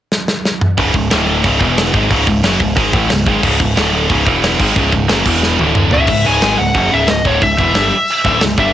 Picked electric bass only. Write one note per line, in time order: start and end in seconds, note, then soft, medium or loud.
0.78 0.93 C#1 medium
0.94 1.10 C#1 medium
1.12 1.42 D1 medium
1.44 1.60 C#1 medium
1.61 1.92 E1 medium
1.94 2.09 G#1 medium
2.10 2.26 C#1 loud
2.27 2.43 C#1 medium
2.44 2.59 F#1 medium
2.60 2.76 C#1 medium
2.77 2.92 G#1 loud
2.93 3.09 A1 medium
3.11 3.26 C#1 medium
3.27 3.42 G#1 loud
3.43 3.59 C#1 loud
3.60 3.76 C#1 medium
3.77 4.08 D1 medium
4.10 4.25 C#1 medium
4.27 4.57 E1 medium
4.60 4.75 G#1 loud
4.76 4.92 C#1 medium
4.93 5.08 C#1 medium
5.09 5.25 F#1 medium
5.26 5.57 E1 medium
5.60 5.90 D1 medium
5.92 6.08 C#1 loud
6.08 6.24 C#1 medium
6.27 6.42 C#1 medium
6.43 6.58 G#1 medium
6.59 6.74 C#1 medium
6.75 6.91 F#1 medium
6.93 7.08 C#1 medium
7.09 7.24 C#1 medium
7.25 7.41 D1 medium
7.42 7.57 C#1 medium
7.59 7.74 E1 medium
7.76 7.91 G1 medium
8.25 8.40 D1 medium
8.42 8.57 C#1 medium
8.58 8.73 G1 medium